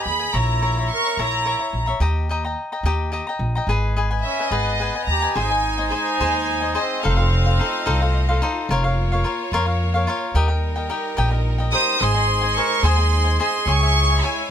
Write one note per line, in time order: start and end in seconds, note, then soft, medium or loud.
0.00 0.18 B4 soft
0.00 0.19 D#5 soft
0.00 0.18 G#5 soft
0.05 0.24 D#2 medium
0.05 0.38 G#4 medium
0.05 0.32 B5 medium
0.19 0.33 B4 soft
0.19 0.34 D#5 soft
0.19 0.34 G#5 soft
0.33 0.88 A#1 loud
0.33 0.91 E4 medium
0.33 0.61 A#4 medium
0.33 0.61 C#5 medium
0.33 0.61 E5 medium
0.33 0.62 A#5 medium
0.33 0.90 A#5 medium
0.62 0.76 A#4 soft
0.62 0.76 C#5 medium
0.62 0.76 E5 medium
0.62 0.76 A#5 medium
0.77 1.04 C#5 soft
0.77 1.03 E5 soft
0.77 1.03 A#5 soft
0.91 1.23 A#4 medium
0.91 1.16 C#6 medium
1.04 1.18 C#5 soft
1.04 1.18 E5 soft
1.04 1.18 A#5 soft
1.17 1.54 A#1 medium
1.17 1.82 E4 medium
1.17 1.44 A#4 medium
1.17 1.45 C#5 medium
1.17 1.46 E5 medium
1.17 1.46 A#5 medium
1.17 1.81 A#5 medium
1.45 1.59 A#4 medium
1.45 1.60 C#5 medium
1.45 1.59 E5 medium
1.45 1.58 A#5 medium
1.59 1.87 C#5 soft
1.59 1.86 E5 soft
1.59 1.85 A#5 soft
1.73 1.91 A#1 medium
1.86 2.01 C#5 soft
1.86 2.01 E5 medium
1.86 2.00 A#5 medium
2.00 2.54 D#2 medium
2.00 2.28 G4 medium
2.00 2.29 D#5 medium
2.00 2.29 G5 medium
2.00 2.29 A#5 medium
2.29 2.43 G4 medium
2.29 2.43 D#5 medium
2.29 2.44 G5 medium
2.29 2.43 A#5 medium
2.44 2.72 D#5 soft
2.44 2.71 G5 soft
2.44 2.71 A#5 soft
2.72 2.84 D#5 soft
2.72 2.85 G5 soft
2.72 2.85 A#5 soft
2.83 3.20 D#2 medium
2.83 3.11 G4 medium
2.83 3.11 D#5 medium
2.83 3.12 G5 medium
2.83 3.12 A#5 medium
3.12 3.26 G4 medium
3.12 3.26 D#5 medium
3.12 3.26 G5 medium
3.12 3.26 A#5 medium
3.27 3.55 D#5 soft
3.27 3.55 G5 medium
3.27 3.54 A#5 medium
3.39 3.57 A#1 medium
3.55 3.68 D#5 soft
3.55 3.69 G5 medium
3.55 3.68 A#5 medium
3.67 4.21 G#1 medium
3.67 3.96 G#4 medium
3.67 3.96 B4 medium
3.67 3.95 D#5 medium
3.67 3.97 G#5 medium
3.96 4.10 G#4 medium
3.96 4.10 B4 medium
3.96 4.10 D#5 medium
3.96 4.09 G#5 medium
4.11 4.38 B4 medium
4.11 4.39 D#5 soft
4.11 4.38 G#5 soft
4.22 4.55 C#4 medium
4.22 4.49 E5 medium
4.39 4.50 B4 soft
4.39 4.50 D#5 soft
4.39 4.51 G#5 soft
4.49 4.87 G#1 medium
4.49 4.78 G#4 medium
4.49 4.79 B4 medium
4.49 5.06 D#5 medium
4.49 4.79 D#5 medium
4.49 4.80 G#5 medium
4.53 5.08 B3 medium
4.79 4.93 G#4 medium
4.79 4.94 B4 medium
4.79 4.94 D#5 medium
4.79 4.94 G#5 medium
4.95 5.22 B4 soft
4.95 5.23 D#5 soft
4.95 5.21 G#5 soft
5.05 5.25 D#2 medium
5.05 5.32 A#5 medium
5.11 5.41 G4 medium
5.22 5.36 B4 medium
5.22 5.35 D#5 soft
5.22 5.35 G#5 medium
5.35 5.90 G#1 medium
5.35 7.01 G#3 medium
5.35 7.01 D#4 medium
5.35 5.49 G#4 medium
5.35 7.01 C5 medium
5.35 5.50 C5 medium
5.35 5.49 D#5 medium
5.35 5.88 G#5 medium
5.35 5.48 G#5 medium
5.39 5.93 D#4 medium
5.50 5.78 C5 soft
5.50 5.78 D#5 soft
5.50 5.77 G#5 soft
5.78 5.90 C5 soft
5.78 5.91 D#5 soft
5.78 5.91 G#5 soft
5.89 6.19 G#4 medium
5.89 6.19 C5 medium
5.89 6.20 D#5 medium
5.89 6.70 G#5 medium
5.89 6.20 G#5 medium
5.94 6.82 D#4 medium
6.20 6.74 D#2 medium
6.20 6.34 G#4 medium
6.20 6.32 C5 medium
6.20 6.31 D#5 medium
6.20 6.31 G#5 medium
6.32 6.61 C5 soft
6.32 6.61 D#5 soft
6.32 6.59 G#5 medium
6.60 6.73 C5 soft
6.60 6.74 D#5 soft
6.60 6.75 G#5 soft
6.75 7.03 G#4 medium
6.75 7.03 C5 medium
6.75 7.03 D#5 medium
6.75 7.03 G#5 medium
6.81 7.07 C4 medium
7.03 7.58 F1 loud
7.03 8.68 A3 medium
7.03 7.17 D#4 medium
7.03 10.32 F4 medium
7.03 7.17 A4 medium
7.03 7.17 C5 medium
7.03 8.67 D#5 medium
7.03 8.41 F5 medium
7.03 7.15 F5 medium
7.07 8.43 C4 medium
7.17 7.45 A4 soft
7.17 7.45 C5 soft
7.17 7.44 F5 soft
7.46 7.59 A4 soft
7.46 7.59 C5 soft
7.46 7.59 F5 medium
7.59 7.85 D#4 medium
7.59 7.86 A4 medium
7.59 7.86 C5 medium
7.59 7.86 F5 soft
7.86 8.40 C2 medium
7.86 8.00 D#4 medium
7.86 8.00 A4 medium
7.86 8.00 C5 medium
7.86 8.00 F5 medium
8.01 8.28 A4 soft
8.01 8.28 C5 soft
8.01 8.27 F5 medium
8.29 8.41 A4 medium
8.29 8.42 C5 medium
8.29 8.42 F5 medium
8.42 8.69 D#4 medium
8.42 8.69 A4 medium
8.42 8.69 C5 medium
8.42 8.70 F5 medium
8.69 9.23 F1 loud
8.69 10.33 A#3 medium
8.69 8.83 F4 medium
8.69 8.83 A#4 medium
8.69 10.34 C#5 medium
8.69 8.83 C#5 medium
8.69 8.83 F5 loud
8.84 9.11 A#4 soft
8.84 9.11 C#5 medium
8.84 9.11 F5 medium
9.12 9.23 A#4 medium
9.12 9.24 C#5 medium
9.12 9.25 F5 medium
9.24 9.52 F4 medium
9.24 9.52 A#4 medium
9.24 9.52 C#5 medium
9.24 9.52 F5 medium
9.52 10.06 F2 loud
9.52 9.66 F4 medium
9.52 9.66 A#4 medium
9.52 9.66 C#5 loud
9.52 9.65 F5 medium
9.66 9.94 A#4 soft
9.66 9.94 C#5 soft
9.66 9.93 F5 medium
9.94 10.07 A#4 soft
9.94 10.08 C#5 medium
9.94 10.07 F5 medium
10.07 10.34 F4 medium
10.07 10.34 A#4 medium
10.07 10.35 C#5 medium
10.07 10.35 F5 medium
10.35 10.88 D#2 medium
10.35 11.99 G3 medium
10.35 13.64 D#4 medium
10.35 10.48 G4 medium
10.35 11.99 A#4 medium
10.35 10.49 A#4 medium
10.35 10.48 D#5 medium
10.35 10.47 G5 medium
10.48 10.76 A#4 medium
10.48 10.75 D#5 soft
10.48 10.74 G5 medium
10.76 10.88 A#4 soft
10.76 10.89 D#5 medium
10.76 10.90 G5 medium
10.90 11.16 G4 medium
10.90 11.16 A#4 medium
10.90 11.17 D#5 medium
10.90 11.17 G5 medium
11.17 11.72 A#1 loud
11.17 11.31 G4 medium
11.17 11.31 A#4 medium
11.17 11.30 D#5 medium
11.17 11.30 G5 loud
11.31 11.59 A#4 soft
11.31 11.59 D#5 medium
11.58 11.71 A#4 soft
11.58 11.72 D#5 soft
11.58 11.72 G5 soft
11.72 12.00 G4 medium
11.72 12.01 A#4 medium
11.72 12.03 C5 medium
11.72 12.01 D#5 medium
11.72 12.01 G5 medium
11.72 11.99 D#6 medium
11.98 12.55 G#1 loud
11.98 13.64 G#3 medium
11.98 12.59 G#4 medium
11.98 12.15 G#4 medium
11.98 13.64 C5 medium
11.98 12.15 C5 medium
11.98 12.56 C6 medium
12.03 12.15 D#5 medium
12.03 12.13 G#5 medium
12.14 12.42 C5 soft
12.14 12.42 D#5 soft
12.14 12.40 G#5 medium
12.41 12.56 C5 soft
12.41 12.57 D#5 soft
12.41 12.56 G#5 soft
12.56 12.83 G#4 soft
12.56 12.86 A#4 medium
12.56 12.83 C5 medium
12.56 12.84 D#5 medium
12.56 12.84 G#5 medium
12.56 12.84 C#6 loud
12.83 13.37 D#2 loud
12.83 12.98 G#4 medium
12.83 13.40 G#4 medium
12.83 12.98 C5 medium
12.83 12.98 D#5 medium
12.83 12.96 G#5 medium
12.83 13.40 C6 medium
12.98 13.24 C5 soft
12.98 13.24 D#5 soft
12.98 13.23 G#5 soft
13.24 13.39 C5 soft
13.24 13.39 D#5 soft
13.24 13.39 G#5 soft
13.40 13.66 G#4 medium
13.40 13.68 G#4 medium
13.40 13.67 C5 medium
13.40 13.67 D#5 medium
13.40 13.67 G#5 medium
13.40 13.66 C6 medium
13.66 14.20 C#2 medium
13.66 14.51 G#3 medium
13.66 14.51 E4 medium
13.66 13.81 G#4 medium
13.66 14.26 G#4 medium
13.66 14.51 C#5 medium
13.66 13.81 C#5 medium
13.66 13.81 E5 medium
13.66 13.80 G#5 medium
13.66 14.23 C#6 loud
13.81 14.09 C#5 soft
13.81 14.09 E5 medium
13.81 14.08 G#5 medium
14.10 14.23 C#5 soft
14.10 14.24 E5 soft
14.10 14.23 G#5 medium
14.22 14.51 E4 medium
14.22 14.49 G#4 medium
14.22 14.50 C#5 medium
14.22 14.50 E5 medium
14.22 14.50 G#5 medium
14.22 14.51 G#5 medium